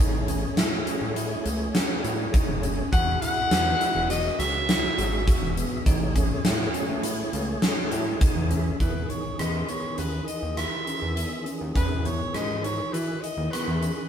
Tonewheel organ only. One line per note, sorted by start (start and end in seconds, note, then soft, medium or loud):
0.00 2.88 A3 medium
0.00 2.88 G#4 medium
0.00 2.89 C#5 medium
2.92 5.82 F#4 medium
2.92 5.82 G#4 medium
2.92 5.83 E5 medium
5.84 8.75 A3 medium
5.84 8.76 G#4 medium
5.84 8.77 C#5 medium
8.21 8.49 G#5 medium
8.50 8.78 E5 medium
8.79 14.09 D#3 soft
8.79 14.09 E3 soft
8.79 14.09 G#4 medium